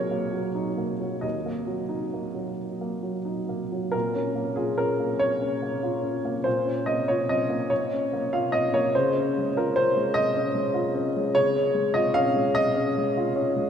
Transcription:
0.00 1.19 D#2 medium
0.00 0.33 F#3 soft
0.00 0.11 A#3 soft
0.00 0.55 D#4 soft
0.00 1.26 G#4 medium
0.00 1.26 A#4 medium
0.00 1.23 C#5 medium
0.11 0.47 A#3 soft
0.33 0.69 F#3 soft
0.55 0.91 D#4 soft
0.77 1.14 A#3 soft
1.00 1.37 F#3 soft
1.21 3.89 D#2 soft
1.21 2.58 D#5 medium
1.46 1.82 A#3 soft
1.67 2.04 F#3 soft
1.89 2.26 D#4 soft
2.13 2.50 A#3 soft
2.35 3.01 F#3 soft
2.81 3.18 A#3 soft
3.03 3.40 F#3 soft
3.25 3.63 D#4 soft
3.49 3.85 A#3 soft
3.72 3.94 F#3 soft
3.92 6.41 A#2 soft
3.92 4.56 A#4 medium
4.15 4.48 C#4 soft
4.35 4.69 A#3 soft
4.56 4.90 F4 soft
4.56 4.77 G#4 medium
4.78 5.12 C#4 soft
4.78 5.20 A#4 medium
5.00 5.61 A#3 soft
5.19 6.45 C#5 medium
5.41 5.75 C#4 soft
5.62 5.96 A#3 soft
5.83 6.16 F4 soft
6.03 6.37 C#4 soft
6.25 6.58 A#3 soft
6.44 8.90 A#2 soft
6.44 6.86 C5 medium
6.65 6.99 C#4 soft
6.86 7.21 A#3 soft
6.86 7.08 D#5 medium
7.08 7.42 F4 soft
7.08 7.29 C#5 medium
7.29 7.63 C#4 soft
7.29 7.71 D#5 medium
7.50 8.12 A#3 soft
7.70 8.32 C#5 medium
7.93 8.25 C#4 soft
8.13 8.45 A#3 soft
8.33 8.65 F4 soft
8.33 8.53 F5 medium
8.52 8.86 C#4 soft
8.52 8.73 D#5 medium
8.74 8.94 A#3 soft
8.74 8.94 C#5 medium
8.95 11.34 C#3 medium
8.95 9.55 C5 medium
9.16 9.48 C#4 soft
9.38 9.68 G#3 soft
9.57 9.88 F4 soft
9.57 9.76 A#4 medium
9.76 10.08 C#4 soft
9.76 10.15 C5 medium
9.97 10.53 G#3 soft
10.14 11.36 D#5 medium
10.35 10.67 C#4 medium
10.55 10.87 G#3 soft
10.74 11.07 F4 soft
10.94 11.28 C#4 soft
11.16 11.49 G#3 soft
11.35 13.70 C#3 medium
11.35 11.96 C#5 loud
11.56 11.88 C#4 soft
11.74 12.08 G#3 soft
11.94 12.28 F4 soft
11.94 12.15 D#5 medium
12.14 12.48 C#4 medium
12.14 12.55 F5 loud
12.36 12.96 G#3 soft
12.55 13.70 D#5 loud
12.76 13.08 C#4 medium
12.98 13.29 G#3 soft
13.17 13.49 F4 medium
13.36 13.68 C#4 medium
13.56 13.70 G#3 medium

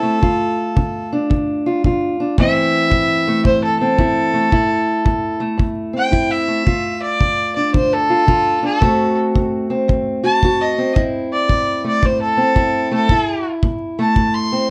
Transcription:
0.00 0.18 A2 medium
0.00 2.39 A3 medium
0.00 0.21 C4 medium
0.00 0.22 E4 medium
0.00 1.08 A4 medium
0.21 0.72 D3 medium
0.21 1.65 F4 medium
0.21 kick medium
0.76 1.26 D3 medium
0.76 kick medium
1.13 2.19 D4 medium
1.30 1.80 D3 medium
1.30 kick medium
1.66 1.84 F4 medium
1.84 2.35 D3 medium
1.84 2.37 F4 medium
1.84 kick medium
2.20 2.36 D4 medium
2.38 2.88 A2 medium
2.38 4.51 E3 medium
2.38 3.27 A3 medium
2.38 3.80 C4 medium
2.38 3.98 E4 medium
2.38 3.43 E5 loud
2.38 kick medium
2.90 3.41 A2 medium
2.90 kick medium
3.28 4.33 A3 medium
3.45 3.95 A2 medium
3.45 3.63 C5 medium
3.45 kick medium
3.64 3.79 A4 medium
3.80 4.51 C4 medium
3.80 5.38 A4 loud
3.99 4.49 A2 medium
3.99 4.51 E4 medium
3.99 kick medium
4.33 5.40 A3 medium
4.52 5.03 A2 medium
4.52 6.11 E4 medium
4.52 kick medium
5.05 5.56 A2 medium
5.05 kick medium
5.40 6.47 A3 medium
5.58 6.09 A2 medium
5.58 kick medium
5.93 6.65 C4 medium
5.98 6.33 G5 medium
6.11 6.63 A2 medium
6.11 6.67 E4 medium
6.11 kick medium
6.31 7.01 E5 medium
6.48 8.81 A3 medium
6.66 7.17 D3 medium
6.66 8.09 F4 medium
6.66 kick medium
7.03 7.55 D5 medium
7.21 7.71 D3 medium
7.21 kick medium
7.56 8.61 D4 medium
7.56 7.74 D5 medium
7.74 8.25 D3 medium
7.74 7.95 C5 loud
7.74 kick medium
7.93 8.63 A4 loud
8.10 8.27 F4 medium
8.27 8.78 D3 medium
8.27 8.80 F4 medium
8.27 kick medium
8.63 8.80 D4 medium
8.63 9.17 A4 loud
8.81 9.31 D#3 medium
8.81 11.84 A3 medium
8.81 9.70 C4 medium
8.81 10.22 F#4 medium
8.81 kick medium
9.35 9.85 D#3 medium
9.35 kick medium
9.70 10.78 C4 medium
9.88 10.38 D#3 medium
9.88 kick medium
10.24 10.43 F#4 medium
10.24 10.63 A5 loud
10.43 10.93 D#3 medium
10.43 10.95 F#4 medium
10.43 kick medium
10.61 10.96 D#5 medium
10.78 12.37 C4 medium
10.96 11.46 A2 medium
10.96 12.56 E4 medium
10.96 kick medium
11.33 11.84 D5 medium
11.49 11.99 A2 medium
11.49 kick medium
11.84 12.90 A3 medium
11.84 12.07 D5 medium
12.03 12.52 A2 medium
12.03 12.22 C5 medium
12.03 kick medium
12.22 12.91 A4 loud
12.37 13.07 C4 medium
12.56 13.06 A2 medium
12.56 13.11 E4 medium
12.56 kick medium
12.91 13.08 A3 medium
12.91 13.45 A4 loud
13.09 13.60 A2 medium
13.09 14.70 E4 medium
13.09 kick medium
13.63 14.12 A2 medium
13.63 kick medium
13.99 14.70 A3 medium
13.99 14.36 A5 medium
14.16 14.66 A2 medium
14.16 kick medium
14.35 14.70 C6 medium
14.52 14.70 C4 medium

